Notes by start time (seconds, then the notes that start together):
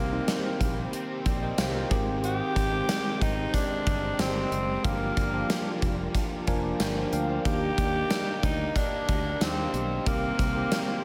Already playing: C2 C3 D#3 G3 A#3 C4 G4 A#4 C5 G5
0.12 D#3 A#3 C4 D#4
0.28 snare, closed hi-hat, tambourine
0.61 A#1, kick, closed hi-hat
0.92 C3 G3 C4, closed hi-hat
1.25 A#1 G3 C4 D5 G5, kick, closed hi-hat
1.42 A#4 D#5
1.58 C2 G4 C5 F5, snare, closed hi-hat, tambourine
1.75 F4 A#4
1.89 G#1 D#3 G#3 C4 G4, kick, closed hi-hat
1.95 G#2
2.24 G4, closed hi-hat
2.56 G#1, kick, closed hi-hat
2.72 D#3 G#3 C4 G4
2.89 snare, closed hi-hat, tambourine
3.21 G#1 D#4, kick, closed hi-hat
3.53 G#2 D#3 G#3 D4, kick, closed hi-hat
3.86 G1 D#3 G#3, kick, closed hi-hat
4.19 G1 D#3 G#3 C4 G4, snare, closed hi-hat, tambourine
4.51 F#1, closed hi-hat
4.83 G1 G2 D3 F3 A#3 D4 F4 G4 A#4 D5 F5, kick, closed hi-hat
4.88 G3
5.17 G1, kick, closed hi-hat
5.33 F3 A#3 D4 G4
5.50 snare, closed hi-hat, tambourine
5.82 F1, kick, closed hi-hat
6.14 G2 D3 G3, kick, closed hi-hat
6.46 F1 D3 F3 G3 A#3 D4 A#4 G#5, kick, closed hi-hat
6.80 G1 G5, snare, closed hi-hat, tambourine
6.97 C5 F5
7.13 D2 D5 F5 G5, closed hi-hat
7.30 C5 F5
7.45 D#2 D#3 A#3 D4 G4, kick, closed hi-hat
7.49 D#4
7.78 D#2, kick, closed hi-hat
7.94 A#3 D#4 G4 D5
8.10 snare, closed hi-hat, tambourine
8.43 D2 D#4, kick, closed hi-hat
8.75 D#3 A#3 D4, kick, closed hi-hat
9.08 D2 A#3 D#4, kick, closed hi-hat
9.41 D#2 D#3 A#3 C4 D4 G4, snare, closed hi-hat, tambourine
9.74 B1, closed hi-hat
10.05 C2 C3 D#3 G3 A#3 C4 G4 C5, kick, closed hi-hat
10.10 C4
10.39 C2, kick, closed hi-hat
10.55 D#3 A#3 C4 G4
10.72 snare, closed hi-hat, tambourine